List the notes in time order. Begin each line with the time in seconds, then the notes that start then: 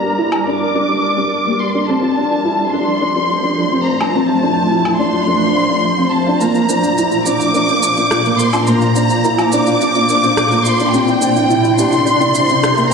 Already playing: G1 G3 G4 A#4 D5 A#5
0.04 G4
0.17 E4 A#4
0.31 G4, low woodblock
0.46 D4 D6
0.60 G4
0.75 D4 G4
0.88 D4 G4
1.03 A#4
1.17 D4 G4
1.45 A#3 G4
1.59 G4 C6
1.74 D4 G4
1.87 F1 F3 C4 A4 A5
2.02 F4
2.16 D4 C5 C6
2.31 F4
2.38 F4
2.44 E4 F4
2.58 F4
2.73 D4 A4 C6
2.79 A3
2.87 F4
3.01 D4 C6
3.16 D4 F4
3.30 F4
3.43 D4 F4
3.58 A4
3.72 C4 F4
3.86 A#5
4.01 D4 F4, low woodblock
4.15 C4 F4 A5
4.28 F4
4.43 D4 A4
4.57 F4
4.71 E4 C6
4.85 F4, low woodblock
4.99 D4 F4 C6
5.13 F4
5.27 D4 A4
5.41 D4 F4
5.55 F5
5.70 D4 F5
5.84 C6
5.98 C4 F5
6.12 A5 C6
6.26 D4 F5
6.39 A#1 A#2 A#3 F4 A#5, shaker
6.55 A#3 F4, shaker
6.69 D4 A#4, shaker
6.83 F4, shaker
6.97 E4 A#5, shaker
7.11 F4, shaker
7.25 D4 F4 D6, shaker
7.38 F4 D5, shaker
7.53 D4 A#4, shaker
7.68 D4 F4, shaker
7.82 A#5, shaker
7.97 D4 F4, shaker
8.11 F4, cross-stick, shaker
8.24 A#3 F4, shaker
8.37 A#4 C6, shaker
8.53 D4 F4, low woodblock, shaker
8.67 A#3 A#5, shaker
8.81 F4, shaker
8.95 D4 F4, shaker
9.10 F4, shaker
9.24 E4 A#4, shaker
9.38 F4, low woodblock, shaker
9.52 D4 A#5 D6, shaker
9.67 F4, shaker
9.81 D4 F4, shaker
9.95 D4 F4, shaker
10.09 A#4, shaker
10.23 D4 F4, shaker
10.37 A#5, cross-stick, shaker
10.52 A#3 F4, shaker
10.65 F4 C6, shaker
10.80 D4 F4, shaker
10.92 C2 C3 C4 G4 G5, shaker
11.08 E4, shaker
11.13 C4
11.21 D4 G5, shaker
11.36 E4, shaker
11.49 E4, shaker
11.64 E4, shaker
11.77 D4 G4 C6, shaker
11.92 E4, shaker
11.96 E5
12.05 D4 G5, shaker
12.20 D4 E4, shaker
12.34 E4, shaker
12.49 D4 E4, shaker
12.63 G4, cross-stick, shaker
12.77 A#3 E4, shaker
12.90 G5 A#5